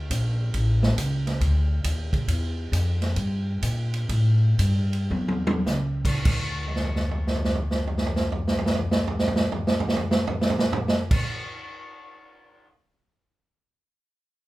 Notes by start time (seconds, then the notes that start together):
0.10 A#1, kick, hi-hat pedal, ride
0.54 A1, kick, ride
0.83 snare
0.97 C#2, kick, hi-hat pedal, ride
1.27 snare, ride
1.41 D2, kick, ride
1.84 D#2, kick, hi-hat pedal, ride
2.13 kick, ride
2.28 E2, kick, ride
2.72 F2, kick, hi-hat pedal, ride
3.02 snare, ride
3.16 G2, kick, ride
3.62 A#2, kick, hi-hat pedal, ride
3.94 ride
4.09 A2, kick, ride
4.59 G2, kick, hi-hat pedal, ride
4.93 ride
5.10 E2, high tom
5.28 high tom
5.47 high tom
5.66 C#2, snare, hi-hat pedal
6.05 kick, crash
6.25 D2, kick, crash
6.67 floor tom
6.76 snare
6.84 floor tom
6.96 snare
7.11 floor tom
7.27 snare
7.36 floor tom
7.44 snare
7.55 floor tom
7.71 snare
7.87 floor tom
7.98 snare
8.06 floor tom
8.16 snare
8.32 floor tom
8.47 snare
8.58 floor tom
8.66 snare
8.75 floor tom
8.91 snare
9.07 floor tom
9.19 snare
9.28 floor tom
9.36 snare
9.52 floor tom
9.67 snare
9.80 floor tom
9.89 snare
9.96 floor tom
10.11 snare
10.27 floor tom
10.41 snare
10.50 floor tom
10.59 snare
10.73 floor tom
10.88 snare
11.11 kick, crash